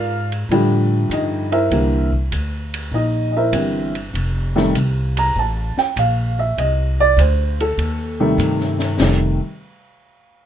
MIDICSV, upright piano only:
0, 0, Header, 1, 2, 480
1, 0, Start_track
1, 0, Tempo, 606673
1, 1356, Time_signature, 4, 2, 24, 8
1, 8274, End_track
2, 0, Start_track
2, 0, Title_t, "Upright piano"
2, 0, Program_c, 0, 0
2, 0, Note_on_c, 0, 65, 85
2, 0, Note_on_c, 0, 70, 84
2, 0, Note_on_c, 0, 74, 80
2, 0, Note_on_c, 0, 77, 107
2, 217, Note_off_c, 0, 74, 0
2, 219, Note_off_c, 0, 77, 0
2, 220, Note_off_c, 0, 65, 0
2, 220, Note_off_c, 0, 70, 0
2, 402, Note_on_c, 0, 50, 77
2, 407, Note_on_c, 0, 53, 70
2, 407, Note_on_c, 0, 57, 74
2, 411, Note_on_c, 0, 55, 90
2, 889, Note_on_c, 0, 75, 81
2, 893, Note_on_c, 0, 63, 67
2, 1142, Note_off_c, 0, 50, 0
2, 1144, Note_off_c, 0, 53, 0
2, 1144, Note_off_c, 0, 57, 0
2, 1147, Note_off_c, 0, 55, 0
2, 1201, Note_off_c, 0, 75, 0
2, 1202, Note_on_c, 0, 76, 96
2, 1203, Note_off_c, 0, 63, 0
2, 1204, Note_on_c, 0, 70, 77
2, 1206, Note_on_c, 0, 64, 75
2, 1208, Note_on_c, 0, 72, 76
2, 1356, Note_on_c, 0, 50, 56
2, 1358, Note_on_c, 0, 52, 60
2, 1358, Note_on_c, 0, 55, 58
2, 1361, Note_on_c, 0, 58, 70
2, 1652, Note_off_c, 0, 50, 0
2, 1652, Note_off_c, 0, 76, 0
2, 1653, Note_off_c, 0, 52, 0
2, 1653, Note_off_c, 0, 55, 0
2, 1653, Note_off_c, 0, 70, 0
2, 1654, Note_off_c, 0, 58, 0
2, 1654, Note_off_c, 0, 64, 0
2, 1655, Note_off_c, 0, 72, 0
2, 2328, Note_on_c, 0, 75, 93
2, 2329, Note_on_c, 0, 63, 72
2, 2611, Note_off_c, 0, 75, 0
2, 2623, Note_on_c, 0, 75, 66
2, 2642, Note_off_c, 0, 63, 0
2, 2642, Note_off_c, 0, 75, 0
2, 2662, Note_on_c, 0, 76, 88
2, 2663, Note_on_c, 0, 70, 72
2, 2665, Note_on_c, 0, 72, 71
2, 2668, Note_on_c, 0, 64, 75
2, 2789, Note_on_c, 0, 50, 56
2, 2789, Note_on_c, 0, 55, 50
2, 2795, Note_on_c, 0, 52, 54
2, 2796, Note_on_c, 0, 60, 59
2, 3088, Note_off_c, 0, 50, 0
2, 3088, Note_off_c, 0, 55, 0
2, 3091, Note_off_c, 0, 52, 0
2, 3092, Note_off_c, 0, 60, 0
2, 3102, Note_off_c, 0, 70, 0
2, 3102, Note_off_c, 0, 76, 0
2, 3104, Note_off_c, 0, 72, 0
2, 3105, Note_off_c, 0, 64, 0
2, 3604, Note_on_c, 0, 51, 79
2, 3605, Note_on_c, 0, 48, 88
2, 3608, Note_on_c, 0, 57, 93
2, 3609, Note_on_c, 0, 55, 74
2, 3741, Note_off_c, 0, 48, 0
2, 3741, Note_off_c, 0, 51, 0
2, 3743, Note_off_c, 0, 55, 0
2, 3743, Note_off_c, 0, 57, 0
2, 4103, Note_on_c, 0, 82, 106
2, 4242, Note_off_c, 0, 82, 0
2, 4265, Note_on_c, 0, 81, 89
2, 4570, Note_off_c, 0, 81, 0
2, 4578, Note_on_c, 0, 79, 99
2, 4719, Note_off_c, 0, 79, 0
2, 4738, Note_on_c, 0, 77, 89
2, 5046, Note_off_c, 0, 77, 0
2, 5057, Note_on_c, 0, 76, 94
2, 5199, Note_off_c, 0, 76, 0
2, 5208, Note_on_c, 0, 75, 84
2, 5521, Note_off_c, 0, 75, 0
2, 5542, Note_on_c, 0, 74, 112
2, 5681, Note_off_c, 0, 74, 0
2, 5692, Note_on_c, 0, 72, 82
2, 6003, Note_off_c, 0, 72, 0
2, 6019, Note_on_c, 0, 69, 89
2, 6487, Note_on_c, 0, 48, 88
2, 6489, Note_on_c, 0, 55, 78
2, 6491, Note_on_c, 0, 57, 82
2, 6494, Note_on_c, 0, 51, 74
2, 7016, Note_off_c, 0, 69, 0
2, 7087, Note_off_c, 0, 48, 0
2, 7088, Note_off_c, 0, 55, 0
2, 7089, Note_off_c, 0, 57, 0
2, 7090, Note_off_c, 0, 51, 0
2, 7123, Note_on_c, 0, 48, 61
2, 7125, Note_on_c, 0, 51, 62
2, 7131, Note_on_c, 0, 55, 56
2, 7134, Note_on_c, 0, 57, 73
2, 7415, Note_off_c, 0, 48, 0
2, 7416, Note_off_c, 0, 51, 0
2, 7418, Note_off_c, 0, 55, 0
2, 7420, Note_off_c, 0, 57, 0
2, 8274, End_track
0, 0, End_of_file